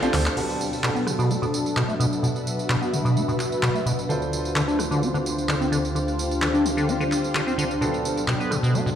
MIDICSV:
0, 0, Header, 1, 7, 480
1, 0, Start_track
1, 0, Key_signature, 2, "minor"
1, 0, Tempo, 465116
1, 382, Time_signature, 4, 2, 24, 8
1, 9241, End_track
2, 0, Start_track
2, 0, Title_t, "Ambient pad"
2, 0, Program_c, 0, 92
2, 0, Note_on_c, 0, 67, 88
2, 0, Note_on_c, 0, 72, 73
2, 0, Note_on_c, 0, 77, 78
2, 0, Note_on_c, 0, 81, 79
2, 382, Note_off_c, 0, 72, 0
2, 382, Note_on_c, 0, 66, 71
2, 383, Note_off_c, 0, 67, 0
2, 383, Note_off_c, 0, 77, 0
2, 434, Note_on_c, 0, 71, 73
2, 844, Note_on_c, 0, 76, 79
2, 4222, Note_off_c, 0, 66, 0
2, 4222, Note_off_c, 0, 71, 0
2, 4222, Note_on_c, 0, 62, 72
2, 4223, Note_off_c, 0, 76, 0
2, 4411, Note_on_c, 0, 67, 77
2, 4671, Note_on_c, 0, 77, 74
2, 4872, Note_on_c, 0, 72, 84
2, 8061, Note_off_c, 0, 67, 0
2, 8061, Note_off_c, 0, 72, 0
2, 8061, Note_off_c, 0, 77, 0
2, 8062, Note_on_c, 0, 66, 75
2, 8063, Note_off_c, 0, 81, 0
2, 8360, Note_on_c, 0, 81, 74
2, 9241, Note_off_c, 0, 62, 0
2, 9241, Note_off_c, 0, 66, 0
2, 9241, Note_off_c, 0, 81, 0
2, 9241, End_track
3, 0, Start_track
3, 0, Title_t, "Grand piano"
3, 0, Program_c, 1, 0
3, 27, Note_on_c, 1, 62, 100
3, 27, Note_on_c, 1, 65, 92
3, 27, Note_on_c, 1, 69, 92
3, 27, Note_on_c, 1, 72, 108
3, 124, Note_off_c, 1, 69, 0
3, 124, Note_off_c, 1, 72, 0
3, 125, Note_off_c, 1, 62, 0
3, 125, Note_off_c, 1, 65, 0
3, 141, Note_on_c, 1, 72, 117
3, 142, Note_on_c, 1, 62, 104
3, 142, Note_on_c, 1, 65, 95
3, 142, Note_on_c, 1, 69, 97
3, 247, Note_off_c, 1, 62, 0
3, 247, Note_off_c, 1, 65, 0
3, 247, Note_off_c, 1, 69, 0
3, 247, Note_off_c, 1, 72, 0
3, 382, Note_on_c, 1, 59, 73
3, 382, Note_on_c, 1, 62, 63
3, 382, Note_on_c, 1, 66, 67
3, 382, Note_on_c, 1, 69, 80
3, 4194, Note_off_c, 1, 59, 0
3, 4194, Note_off_c, 1, 62, 0
3, 4194, Note_off_c, 1, 66, 0
3, 4194, Note_off_c, 1, 69, 0
3, 4222, Note_on_c, 1, 62, 74
3, 4222, Note_on_c, 1, 65, 67
3, 4222, Note_on_c, 1, 69, 65
3, 4222, Note_on_c, 1, 72, 79
3, 8035, Note_off_c, 1, 62, 0
3, 8035, Note_off_c, 1, 65, 0
3, 8035, Note_off_c, 1, 69, 0
3, 8035, Note_off_c, 1, 72, 0
3, 8062, Note_on_c, 1, 59, 75
3, 8062, Note_on_c, 1, 62, 67
3, 8062, Note_on_c, 1, 66, 66
3, 8062, Note_on_c, 1, 69, 79
3, 9241, Note_off_c, 1, 59, 0
3, 9241, Note_off_c, 1, 62, 0
3, 9241, Note_off_c, 1, 66, 0
3, 9241, Note_off_c, 1, 69, 0
3, 9241, End_track
4, 0, Start_track
4, 0, Title_t, "Analog synth pad"
4, 0, Program_c, 2, 89
4, 0, Note_on_c, 2, 50, 82
4, 0, Note_on_c, 2, 57, 78
4, 0, Note_on_c, 2, 60, 76
4, 0, Note_on_c, 2, 65, 88
4, 341, Note_off_c, 2, 50, 0
4, 343, Note_off_c, 2, 57, 0
4, 343, Note_off_c, 2, 60, 0
4, 344, Note_off_c, 2, 65, 0
4, 381, Note_on_c, 2, 47, 80
4, 381, Note_on_c, 2, 62, 74
4, 381, Note_on_c, 2, 69, 87
4, 382, Note_on_c, 2, 54, 71
4, 2282, Note_off_c, 2, 69, 0
4, 2302, Note_on_c, 2, 71, 87
4, 4183, Note_off_c, 2, 47, 0
4, 4183, Note_off_c, 2, 54, 0
4, 4183, Note_off_c, 2, 62, 0
4, 4203, Note_off_c, 2, 71, 0
4, 4222, Note_on_c, 2, 65, 73
4, 4223, Note_on_c, 2, 38, 77
4, 4223, Note_on_c, 2, 50, 74
4, 4223, Note_on_c, 2, 72, 90
4, 8024, Note_off_c, 2, 38, 0
4, 8024, Note_off_c, 2, 50, 0
4, 8024, Note_off_c, 2, 65, 0
4, 8024, Note_off_c, 2, 72, 0
4, 8063, Note_on_c, 2, 47, 80
4, 8063, Note_on_c, 2, 54, 74
4, 8063, Note_on_c, 2, 62, 73
4, 8063, Note_on_c, 2, 69, 90
4, 9241, Note_off_c, 2, 47, 0
4, 9241, Note_off_c, 2, 54, 0
4, 9241, Note_off_c, 2, 62, 0
4, 9241, Note_off_c, 2, 69, 0
4, 9241, End_track
5, 0, Start_track
5, 0, Title_t, "Acid bass"
5, 0, Program_c, 3, 38
5, 26, Note_on_c, 3, 60, 77
5, 90, Note_off_c, 3, 60, 0
5, 140, Note_on_c, 3, 50, 102
5, 210, Note_off_c, 3, 50, 0
5, 380, Note_on_c, 3, 47, 80
5, 423, Note_off_c, 3, 47, 0
5, 861, Note_on_c, 3, 47, 97
5, 931, Note_off_c, 3, 47, 0
5, 986, Note_on_c, 3, 59, 70
5, 1101, Note_on_c, 3, 47, 75
5, 1116, Note_off_c, 3, 59, 0
5, 1170, Note_off_c, 3, 47, 0
5, 1226, Note_on_c, 3, 47, 101
5, 1341, Note_on_c, 3, 59, 94
5, 1357, Note_off_c, 3, 47, 0
5, 1410, Note_off_c, 3, 59, 0
5, 1466, Note_on_c, 3, 47, 95
5, 1505, Note_off_c, 3, 47, 0
5, 1821, Note_on_c, 3, 47, 100
5, 1890, Note_off_c, 3, 47, 0
5, 1948, Note_on_c, 3, 57, 77
5, 2011, Note_off_c, 3, 57, 0
5, 2062, Note_on_c, 3, 47, 97
5, 2131, Note_off_c, 3, 47, 0
5, 2302, Note_on_c, 3, 47, 83
5, 2343, Note_off_c, 3, 47, 0
5, 2782, Note_on_c, 3, 47, 96
5, 2851, Note_off_c, 3, 47, 0
5, 2907, Note_on_c, 3, 59, 72
5, 3022, Note_on_c, 3, 47, 74
5, 3037, Note_off_c, 3, 59, 0
5, 3091, Note_off_c, 3, 47, 0
5, 3148, Note_on_c, 3, 47, 102
5, 3262, Note_on_c, 3, 59, 96
5, 3278, Note_off_c, 3, 47, 0
5, 3331, Note_off_c, 3, 59, 0
5, 3388, Note_on_c, 3, 47, 95
5, 3426, Note_off_c, 3, 47, 0
5, 3743, Note_on_c, 3, 47, 99
5, 3811, Note_off_c, 3, 47, 0
5, 3868, Note_on_c, 3, 57, 73
5, 3931, Note_off_c, 3, 57, 0
5, 3982, Note_on_c, 3, 47, 98
5, 4051, Note_off_c, 3, 47, 0
5, 4222, Note_on_c, 3, 50, 80
5, 4264, Note_off_c, 3, 50, 0
5, 4702, Note_on_c, 3, 50, 97
5, 4771, Note_off_c, 3, 50, 0
5, 4828, Note_on_c, 3, 62, 72
5, 4943, Note_on_c, 3, 50, 73
5, 4959, Note_off_c, 3, 62, 0
5, 5011, Note_off_c, 3, 50, 0
5, 5067, Note_on_c, 3, 50, 99
5, 5183, Note_on_c, 3, 62, 97
5, 5198, Note_off_c, 3, 50, 0
5, 5251, Note_off_c, 3, 62, 0
5, 5308, Note_on_c, 3, 50, 96
5, 5345, Note_off_c, 3, 50, 0
5, 5662, Note_on_c, 3, 50, 102
5, 5731, Note_off_c, 3, 50, 0
5, 5787, Note_on_c, 3, 60, 74
5, 5850, Note_off_c, 3, 60, 0
5, 5902, Note_on_c, 3, 50, 102
5, 5971, Note_off_c, 3, 50, 0
5, 6142, Note_on_c, 3, 50, 81
5, 6183, Note_off_c, 3, 50, 0
5, 6622, Note_on_c, 3, 50, 97
5, 6691, Note_off_c, 3, 50, 0
5, 6748, Note_on_c, 3, 62, 70
5, 6863, Note_on_c, 3, 50, 73
5, 6878, Note_off_c, 3, 62, 0
5, 6931, Note_off_c, 3, 50, 0
5, 6988, Note_on_c, 3, 50, 100
5, 7103, Note_on_c, 3, 62, 97
5, 7118, Note_off_c, 3, 50, 0
5, 7171, Note_off_c, 3, 62, 0
5, 7229, Note_on_c, 3, 50, 100
5, 7266, Note_off_c, 3, 50, 0
5, 7583, Note_on_c, 3, 50, 96
5, 7651, Note_off_c, 3, 50, 0
5, 7709, Note_on_c, 3, 60, 79
5, 7771, Note_off_c, 3, 60, 0
5, 7822, Note_on_c, 3, 50, 99
5, 7891, Note_off_c, 3, 50, 0
5, 8063, Note_on_c, 3, 47, 82
5, 8104, Note_off_c, 3, 47, 0
5, 8542, Note_on_c, 3, 47, 101
5, 8611, Note_off_c, 3, 47, 0
5, 8668, Note_on_c, 3, 59, 74
5, 8783, Note_on_c, 3, 47, 74
5, 8798, Note_off_c, 3, 59, 0
5, 8851, Note_off_c, 3, 47, 0
5, 8908, Note_on_c, 3, 47, 103
5, 9022, Note_on_c, 3, 59, 95
5, 9038, Note_off_c, 3, 47, 0
5, 9091, Note_off_c, 3, 59, 0
5, 9147, Note_on_c, 3, 47, 96
5, 9185, Note_off_c, 3, 47, 0
5, 9241, End_track
6, 0, Start_track
6, 0, Title_t, "Sub bass"
6, 0, Program_c, 4, 38
6, 141, Note_on_c, 4, 38, 83
6, 297, Note_off_c, 4, 38, 0
6, 9241, End_track
7, 0, Start_track
7, 0, Title_t, "Drums"
7, 27, Note_on_c, 9, 38, 34
7, 27, Note_on_c, 9, 42, 41
7, 34, Note_on_c, 9, 54, 23
7, 130, Note_off_c, 9, 38, 0
7, 130, Note_off_c, 9, 42, 0
7, 137, Note_off_c, 9, 54, 0
7, 141, Note_on_c, 9, 39, 91
7, 141, Note_on_c, 9, 46, 109
7, 142, Note_on_c, 9, 54, 64
7, 149, Note_off_c, 9, 54, 0
7, 149, Note_on_c, 9, 54, 89
7, 244, Note_off_c, 9, 39, 0
7, 244, Note_off_c, 9, 46, 0
7, 252, Note_off_c, 9, 54, 0
7, 267, Note_on_c, 9, 38, 37
7, 267, Note_on_c, 9, 39, 99
7, 274, Note_on_c, 9, 54, 37
7, 370, Note_off_c, 9, 39, 0
7, 371, Note_off_c, 9, 38, 0
7, 377, Note_off_c, 9, 54, 0
7, 381, Note_on_c, 9, 49, 81
7, 389, Note_on_c, 9, 54, 43
7, 485, Note_off_c, 9, 49, 0
7, 492, Note_off_c, 9, 54, 0
7, 514, Note_on_c, 9, 54, 22
7, 617, Note_off_c, 9, 54, 0
7, 629, Note_on_c, 9, 54, 74
7, 732, Note_off_c, 9, 54, 0
7, 754, Note_on_c, 9, 54, 31
7, 858, Note_off_c, 9, 54, 0
7, 864, Note_on_c, 9, 39, 120
7, 869, Note_on_c, 9, 54, 43
7, 967, Note_off_c, 9, 39, 0
7, 972, Note_off_c, 9, 54, 0
7, 994, Note_on_c, 9, 54, 21
7, 1097, Note_off_c, 9, 54, 0
7, 1101, Note_on_c, 9, 37, 54
7, 1109, Note_on_c, 9, 54, 73
7, 1205, Note_off_c, 9, 37, 0
7, 1212, Note_off_c, 9, 54, 0
7, 1234, Note_on_c, 9, 54, 32
7, 1337, Note_off_c, 9, 54, 0
7, 1349, Note_on_c, 9, 54, 41
7, 1452, Note_off_c, 9, 54, 0
7, 1474, Note_on_c, 9, 54, 21
7, 1578, Note_off_c, 9, 54, 0
7, 1589, Note_on_c, 9, 54, 75
7, 1692, Note_off_c, 9, 54, 0
7, 1714, Note_on_c, 9, 54, 33
7, 1818, Note_off_c, 9, 54, 0
7, 1824, Note_on_c, 9, 39, 117
7, 1829, Note_on_c, 9, 54, 43
7, 1927, Note_off_c, 9, 39, 0
7, 1932, Note_off_c, 9, 54, 0
7, 1955, Note_on_c, 9, 54, 21
7, 2058, Note_off_c, 9, 54, 0
7, 2069, Note_on_c, 9, 54, 77
7, 2172, Note_off_c, 9, 54, 0
7, 2195, Note_on_c, 9, 54, 32
7, 2298, Note_off_c, 9, 54, 0
7, 2309, Note_on_c, 9, 54, 42
7, 2413, Note_off_c, 9, 54, 0
7, 2435, Note_on_c, 9, 54, 20
7, 2538, Note_off_c, 9, 54, 0
7, 2549, Note_on_c, 9, 54, 71
7, 2652, Note_off_c, 9, 54, 0
7, 2675, Note_on_c, 9, 54, 32
7, 2778, Note_off_c, 9, 54, 0
7, 2784, Note_on_c, 9, 39, 118
7, 2790, Note_on_c, 9, 54, 41
7, 2888, Note_off_c, 9, 39, 0
7, 2893, Note_off_c, 9, 54, 0
7, 2915, Note_on_c, 9, 54, 21
7, 3018, Note_off_c, 9, 54, 0
7, 3030, Note_on_c, 9, 54, 70
7, 3133, Note_off_c, 9, 54, 0
7, 3155, Note_on_c, 9, 54, 30
7, 3258, Note_off_c, 9, 54, 0
7, 3270, Note_on_c, 9, 54, 41
7, 3373, Note_off_c, 9, 54, 0
7, 3395, Note_on_c, 9, 54, 20
7, 3498, Note_off_c, 9, 54, 0
7, 3504, Note_on_c, 9, 39, 37
7, 3510, Note_on_c, 9, 54, 73
7, 3608, Note_off_c, 9, 39, 0
7, 3613, Note_off_c, 9, 54, 0
7, 3635, Note_on_c, 9, 54, 30
7, 3738, Note_off_c, 9, 54, 0
7, 3745, Note_on_c, 9, 39, 122
7, 3750, Note_on_c, 9, 54, 42
7, 3848, Note_off_c, 9, 39, 0
7, 3853, Note_off_c, 9, 54, 0
7, 3875, Note_on_c, 9, 54, 21
7, 3978, Note_off_c, 9, 54, 0
7, 3990, Note_on_c, 9, 54, 75
7, 4093, Note_off_c, 9, 54, 0
7, 4115, Note_on_c, 9, 54, 31
7, 4219, Note_off_c, 9, 54, 0
7, 4230, Note_on_c, 9, 54, 40
7, 4333, Note_off_c, 9, 54, 0
7, 4355, Note_on_c, 9, 54, 20
7, 4458, Note_off_c, 9, 54, 0
7, 4470, Note_on_c, 9, 54, 72
7, 4573, Note_off_c, 9, 54, 0
7, 4595, Note_on_c, 9, 54, 31
7, 4698, Note_off_c, 9, 54, 0
7, 4704, Note_on_c, 9, 39, 114
7, 4709, Note_on_c, 9, 54, 42
7, 4807, Note_off_c, 9, 39, 0
7, 4813, Note_off_c, 9, 54, 0
7, 4835, Note_on_c, 9, 54, 20
7, 4938, Note_off_c, 9, 54, 0
7, 4942, Note_on_c, 9, 37, 60
7, 4950, Note_on_c, 9, 54, 69
7, 5046, Note_off_c, 9, 37, 0
7, 5053, Note_off_c, 9, 54, 0
7, 5075, Note_on_c, 9, 54, 31
7, 5178, Note_off_c, 9, 54, 0
7, 5190, Note_on_c, 9, 54, 39
7, 5293, Note_off_c, 9, 54, 0
7, 5315, Note_on_c, 9, 54, 20
7, 5418, Note_off_c, 9, 54, 0
7, 5430, Note_on_c, 9, 54, 71
7, 5533, Note_off_c, 9, 54, 0
7, 5556, Note_on_c, 9, 54, 31
7, 5659, Note_off_c, 9, 54, 0
7, 5665, Note_on_c, 9, 39, 117
7, 5670, Note_on_c, 9, 54, 41
7, 5768, Note_off_c, 9, 39, 0
7, 5774, Note_off_c, 9, 54, 0
7, 5795, Note_on_c, 9, 54, 20
7, 5899, Note_off_c, 9, 54, 0
7, 5910, Note_on_c, 9, 54, 76
7, 6013, Note_off_c, 9, 54, 0
7, 6035, Note_on_c, 9, 54, 31
7, 6139, Note_off_c, 9, 54, 0
7, 6150, Note_on_c, 9, 54, 42
7, 6253, Note_off_c, 9, 54, 0
7, 6275, Note_on_c, 9, 54, 22
7, 6378, Note_off_c, 9, 54, 0
7, 6390, Note_on_c, 9, 54, 74
7, 6493, Note_off_c, 9, 54, 0
7, 6515, Note_on_c, 9, 54, 32
7, 6618, Note_off_c, 9, 54, 0
7, 6625, Note_on_c, 9, 39, 114
7, 6630, Note_on_c, 9, 54, 41
7, 6728, Note_off_c, 9, 39, 0
7, 6733, Note_off_c, 9, 54, 0
7, 6755, Note_on_c, 9, 54, 21
7, 6858, Note_off_c, 9, 54, 0
7, 6870, Note_on_c, 9, 54, 68
7, 6973, Note_off_c, 9, 54, 0
7, 6995, Note_on_c, 9, 54, 31
7, 7098, Note_off_c, 9, 54, 0
7, 7109, Note_on_c, 9, 54, 40
7, 7213, Note_off_c, 9, 54, 0
7, 7235, Note_on_c, 9, 54, 21
7, 7338, Note_off_c, 9, 54, 0
7, 7345, Note_on_c, 9, 39, 36
7, 7350, Note_on_c, 9, 54, 72
7, 7448, Note_off_c, 9, 39, 0
7, 7453, Note_off_c, 9, 54, 0
7, 7475, Note_on_c, 9, 54, 30
7, 7578, Note_off_c, 9, 54, 0
7, 7585, Note_on_c, 9, 39, 111
7, 7590, Note_on_c, 9, 54, 41
7, 7688, Note_off_c, 9, 39, 0
7, 7693, Note_off_c, 9, 54, 0
7, 7716, Note_on_c, 9, 54, 21
7, 7819, Note_off_c, 9, 54, 0
7, 7830, Note_on_c, 9, 54, 76
7, 7934, Note_off_c, 9, 54, 0
7, 7956, Note_on_c, 9, 54, 30
7, 8059, Note_off_c, 9, 54, 0
7, 8070, Note_on_c, 9, 54, 42
7, 8174, Note_off_c, 9, 54, 0
7, 8195, Note_on_c, 9, 54, 22
7, 8299, Note_off_c, 9, 54, 0
7, 8310, Note_on_c, 9, 54, 73
7, 8413, Note_off_c, 9, 54, 0
7, 8435, Note_on_c, 9, 54, 33
7, 8538, Note_off_c, 9, 54, 0
7, 8545, Note_on_c, 9, 39, 109
7, 8550, Note_on_c, 9, 54, 43
7, 8648, Note_off_c, 9, 39, 0
7, 8653, Note_off_c, 9, 54, 0
7, 8675, Note_on_c, 9, 54, 21
7, 8779, Note_off_c, 9, 54, 0
7, 8783, Note_on_c, 9, 37, 59
7, 8790, Note_on_c, 9, 54, 76
7, 8886, Note_off_c, 9, 37, 0
7, 8893, Note_off_c, 9, 54, 0
7, 8916, Note_on_c, 9, 54, 32
7, 9019, Note_off_c, 9, 54, 0
7, 9031, Note_on_c, 9, 54, 41
7, 9134, Note_off_c, 9, 54, 0
7, 9156, Note_on_c, 9, 54, 21
7, 9241, Note_off_c, 9, 54, 0
7, 9241, End_track
0, 0, End_of_file